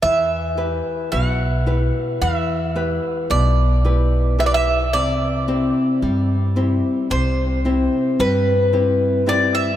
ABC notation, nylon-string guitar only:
X:1
M:9/8
L:1/8
Q:3/8=37
K:Em
V:1 name="Nylon-string guitar"
E, [EGB] B,, [EGB] E, [EGB] B,, [EGB] [EGB] | C, [CEG] G, [CEG] C, [CEG] G, [CEG] [CEG] |]